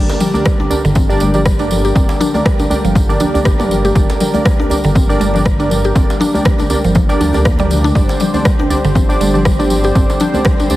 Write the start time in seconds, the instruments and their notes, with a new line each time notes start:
Already playing: analog synth pad D3 G3 A#3 G4 A#4, synth keys D4 G4 A#4 D5
0.09 tambourine, djembe slap
0.20 synth pluck G3, tambourine, low conga
0.34 synth keys D4 G4 A#4 D5, tambourine, high conga, djembe tone
0.45 synth pluck G3, kick, cross-stick, tambourine, djembe slap
0.60 synth pluck D4, djembe tone
0.70 synth keys D4 G4 A#4 D5, tambourine, djembe bass
0.84 detuned saw bass G1, synth pluck D3, tambourine
0.95 synth pluck C4, kick, tambourine, low conga
1.09 synth keys D4 G4 A#4 D5, tambourine
1.20 detuned saw bass G1, synth pluck G3, tambourine, high conga
1.34 synth keys D4 G4 A#4 D5, tambourine, low conga
1.45 synth pluck G3, kick, cross-stick, tambourine
1.59 synth keys D4 G4 A#4 D5, synth pluck D4, tambourine, high conga
1.71 tambourine, low conga
1.85 synth pluck G4, tambourine
1.95 detuned saw bass G1, synth pluck C4, synth keys D4 G4 A#4 D5, kick, tambourine
2.09 tambourine, djembe slap
2.20 synth pluck D4, tambourine, low conga
2.34 synth keys D4 G4 A#4 D5, tambourine, djembe tone, high conga
2.46 synth pluck G3, kick, cross-stick, tambourine, djembe slap
2.59 synth pluck D4, tambourine, djembe tone
2.70 synth keys D4 G4 A#4 D5, tambourine, high conga, djembe bass
2.84 detuned saw bass G1, synth pluck F3, tambourine
2.95 synth pluck F3, kick, tambourine, high conga, djembe tone, low conga
3.09 synth keys D4 G4 A#4 D5, tambourine, djembe slap
3.20 synth pluck D4, tambourine, djembe tone, low conga
3.34 synth keys D4 G4 A#4 D5, tambourine, high conga, djembe bass
3.45 detuned saw bass G1, synth pluck G4, kick, cross-stick, tambourine
3.59 synth keys D4 G4 A#4 D5, synth pluck D4, mid tom, tambourine, djembe slap
3.71 tambourine, low conga
3.85 synth pluck G4, tambourine, high conga
3.95 detuned saw bass G1, synth pluck G3, synth keys D4 G4 A#4 D5, kick, tambourine
4.10 tambourine, djembe slap
4.20 synth pluck G3, tambourine, low conga
4.34 synth keys D4 G4 A#4 D5, tambourine, high conga, djembe tone
4.45 synth pluck G3, kick, cross-stick, tambourine, djembe slap
4.60 synth pluck D4, djembe tone
4.70 synth keys D4 G4 A#4 D5, tambourine, djembe bass
4.84 detuned saw bass G1, synth pluck D3, tambourine
4.95 synth pluck C4, kick, tambourine, low conga
5.09 synth keys D4 G4 A#4 D5, tambourine
5.20 detuned saw bass G1, synth pluck G3, tambourine, high conga
5.34 synth keys D4 G4 A#4 D5, tambourine, low conga
5.46 synth pluck G3, kick, cross-stick, tambourine
5.59 synth keys D4 G4 A#4 D5, synth pluck D4, tambourine, high conga
5.70 tambourine, low conga
5.84 synth pluck G4, tambourine
5.95 detuned saw bass G1, synth pluck C4, synth keys D4 G4 A#4 D5, kick, tambourine
6.10 tambourine, djembe slap
6.20 synth pluck D4, tambourine, low conga
6.34 synth keys D4 G4 A#4 D5, tambourine, high conga, djembe tone
6.45 synth pluck G3, kick, cross-stick, tambourine, djembe slap
6.59 synth pluck D4, tambourine, djembe tone
6.70 synth keys D4 G4 A#4 D5, tambourine, high conga, djembe bass
6.84 detuned saw bass G1, synth pluck F3, tambourine
6.95 synth pluck F3, kick, tambourine, high conga, djembe tone, low conga
7.09 synth keys D4 G4 A#4 D5, tambourine, djembe slap
7.20 detuned saw bass D2, synth pluck D4, tambourine, djembe tone, low conga
7.33 synth keys D4 G4 A#4 D5, tambourine, high conga, djembe bass
7.45 synth pluck A#3, kick, cross-stick, tambourine
7.59 synth pluck G3, synth keys D4 G4 A#4 D5, mid tom, tambourine, djembe slap
7.70 tambourine, low conga
7.84 synth pluck D4, tambourine, high conga
7.95 detuned saw bass G1, analog synth pad D3 G3 C4 G4 C5, synth pluck G3, synth keys D4 G4 C5 D5, kick, tambourine
8.09 tambourine, djembe slap
8.20 synth pluck G3, tambourine, low conga
8.34 synth keys D4 G4 C5 D5, tambourine, djembe tone, high conga
8.45 synth pluck G3, kick, cross-stick, tambourine, djembe slap
8.59 synth pluck D4, djembe tone
8.70 synth keys D4 G4 C5 D5, tambourine, djembe bass
8.84 detuned saw bass G1, synth pluck D3, tambourine
8.95 synth pluck C4, kick, tambourine, low conga
9.09 synth keys D4 G4 C5 D5, tambourine
9.20 detuned saw bass G1, synth pluck G3, tambourine, high conga
9.34 synth keys D4 G4 C5 D5, tambourine, low conga
9.45 synth pluck G3, kick, cross-stick, tambourine
9.59 synth keys D4 G4 C5 D5, synth pluck D4, tambourine, high conga
9.70 tambourine, low conga
9.84 synth pluck G4, tambourine
9.95 detuned saw bass G1, synth pluck C4, synth keys D4 G4 C5 D5, kick, tambourine
10.10 tambourine, djembe slap
10.20 synth pluck D4, tambourine, low conga
10.34 synth keys D4 G4 C5 D5, tambourine, high conga, djembe tone
10.45 synth pluck G3, kick, cross-stick, tambourine, djembe slap
10.60 synth pluck D4, tambourine, djembe tone
10.70 synth keys D4 G4 C5 D5, tambourine, high conga, djembe bass